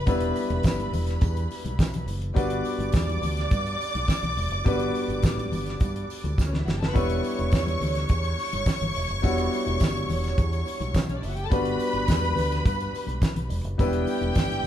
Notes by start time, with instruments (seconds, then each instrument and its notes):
Already playing: string section B4 B5
0.06 fingered electric bass E1, grand piano G3 B3 D4 E4 B4, kick, closed hi-hat, tambourine, muted conga
0.20 closed hi-hat
0.36 open hi-hat, tambourine, muted conga
0.50 fingered electric bass E1, closed hi-hat, high conga
0.63 kick, snare, closed hi-hat, tambourine
0.79 closed hi-hat, high conga
0.92 fingered electric bass E1, open hi-hat, tambourine, muted conga, low conga
1.07 snare, closed hi-hat, tambourine
1.21 fingered electric bass E2, kick, closed hi-hat, tambourine, muted conga
1.36 closed hi-hat, tambourine
1.51 open hi-hat, tambourine, muted conga
1.64 fingered electric bass B1, closed hi-hat, tambourine, high conga
1.79 fingered electric bass B1, kick, snare, closed hi-hat, tambourine, muted conga
1.94 closed hi-hat, low conga
2.06 fingered electric bass F#1, open hi-hat, tambourine, muted conga
2.22 closed hi-hat
2.34 fingered electric bass G1, grand piano G3 B3 D4 F#4 B4, string section D5 D6, kick, closed hi-hat, tambourine
2.38 muted conga
2.50 closed hi-hat
2.65 open hi-hat, tambourine
2.78 fingered electric bass G1, closed hi-hat, high conga
2.92 fingered electric bass E2, kick, snare, closed hi-hat, tambourine
3.09 closed hi-hat, high conga
3.21 fingered electric bass D2, open hi-hat, tambourine, muted conga, low conga
3.37 snare, closed hi-hat, tambourine
3.51 fingered electric bass G2, kick, closed hi-hat, tambourine, muted conga
3.66 closed hi-hat, tambourine
3.81 open hi-hat, tambourine
3.95 fingered electric bass B1, closed hi-hat, tambourine, high conga
4.08 kick, snare, closed hi-hat, tambourine
4.23 fingered electric bass B1, closed hi-hat, low conga
4.37 fingered electric bass E1, open hi-hat, tambourine, muted conga
4.51 fingered electric bass F#1, closed hi-hat
4.64 fingered electric bass G1, grand piano G3 B3 D4 F#4 B4, kick, closed hi-hat, tambourine, muted conga
4.80 closed hi-hat
4.95 open hi-hat, tambourine
5.08 fingered electric bass G1, closed hi-hat, high conga
5.22 fingered electric bass A1, kick, snare, closed hi-hat, tambourine
5.38 closed hi-hat, high conga
5.52 fingered electric bass G1, open hi-hat, tambourine, low conga
5.66 snare, closed hi-hat, tambourine
5.80 fingered electric bass G2, kick, closed hi-hat, tambourine, muted conga
5.96 closed hi-hat
6.10 open hi-hat, tambourine
6.24 fingered electric bass D2, closed hi-hat, tambourine, high conga
6.38 fingered electric bass D2, kick, snare, tambourine, muted conga
6.46 string section C#4 C#5
6.53 string section D4 D5, snare, high conga, low conga
6.58 string section E4 E5
6.67 fingered electric bass F#1, string section F#4 F#5, snare, tambourine, muted conga
6.74 string section G4 G5
6.80 string section A4 A5, snare, tambourine
6.87 string section B4 B5
6.92 fingered electric bass E1, grand piano G3 B3 D4 E4, string section C#5 C#6, kick, closed hi-hat, tambourine
6.96 grand piano B4, muted conga
7.10 closed hi-hat
7.24 open hi-hat, tambourine
7.39 fingered electric bass E1, closed hi-hat, high conga
7.52 fingered electric bass E2, kick, snare, closed hi-hat, tambourine
7.67 closed hi-hat, high conga
7.81 fingered electric bass D2, open hi-hat, tambourine, muted conga, low conga
7.95 snare, closed hi-hat
8.09 fingered electric bass E2, kick, closed hi-hat, tambourine
8.24 closed hi-hat, tambourine
8.38 open hi-hat, tambourine, muted conga
8.53 fingered electric bass G1, closed hi-hat, tambourine, high conga
8.66 kick, snare, closed hi-hat, tambourine, muted conga
8.81 fingered electric bass G1, closed hi-hat, low conga
8.94 fingered electric bass E1, open hi-hat, tambourine, muted conga
9.09 fingered electric bass F#1, closed hi-hat, tambourine
9.22 fingered electric bass E1, grand piano G3 B3 D4 E4 F#4, kick, closed hi-hat, tambourine
9.38 closed hi-hat
9.53 open hi-hat, tambourine
9.66 fingered electric bass E1, closed hi-hat, high conga
9.80 fingered electric bass G1, kick, snare, closed hi-hat, tambourine
9.95 closed hi-hat, high conga
10.09 fingered electric bass E1, open hi-hat, tambourine, low conga
10.24 snare, closed hi-hat, tambourine
10.38 fingered electric bass E2, kick, closed hi-hat, tambourine
10.52 closed hi-hat, tambourine
10.66 open hi-hat, tambourine, muted conga
10.80 fingered electric bass B1, closed hi-hat, tambourine, high conga
10.94 fingered electric bass B1, kick, snare, closed hi-hat, tambourine, muted conga
11.08 string section C#4 C#5, closed hi-hat, low conga
11.16 string section D4 D5
11.23 fingered electric bass F#1, string section E4 E5, open hi-hat, tambourine, muted conga
11.29 string section F#4 F#5
11.36 string section G4 G5, closed hi-hat
11.45 string section A4 A5
11.50 fingered electric bass G1, grand piano G3 B3 D4 F#4 B4, string section B4 B5, kick, closed hi-hat, tambourine
11.65 closed hi-hat
11.79 open hi-hat, tambourine, muted conga
11.93 fingered electric bass G1, closed hi-hat, high conga
12.08 fingered electric bass E2, kick, snare, closed hi-hat, tambourine, muted conga
12.21 closed hi-hat, high conga
12.36 fingered electric bass D2, open hi-hat, tambourine, muted conga, low conga
12.52 snare, closed hi-hat, tambourine
12.65 fingered electric bass G2, kick, closed hi-hat, tambourine
12.80 closed hi-hat, tambourine
12.93 open hi-hat, tambourine, muted conga
13.07 fingered electric bass B1, closed hi-hat, high conga
13.22 kick, snare, closed hi-hat, tambourine, muted conga
13.36 fingered electric bass B1, closed hi-hat, low conga
13.49 fingered electric bass E1, open hi-hat, tambourine, muted conga
13.64 fingered electric bass F#1, closed hi-hat
13.78 fingered electric bass E1, grand piano G3 B3 D4 E4 B4, string section G4 G5, kick, closed hi-hat, tambourine, muted conga
13.93 closed hi-hat
14.07 open hi-hat, tambourine, muted conga
14.21 fingered electric bass E1, closed hi-hat, high conga
14.35 fingered electric bass G1, kick, snare, closed hi-hat, tambourine, muted conga
14.50 closed hi-hat, high conga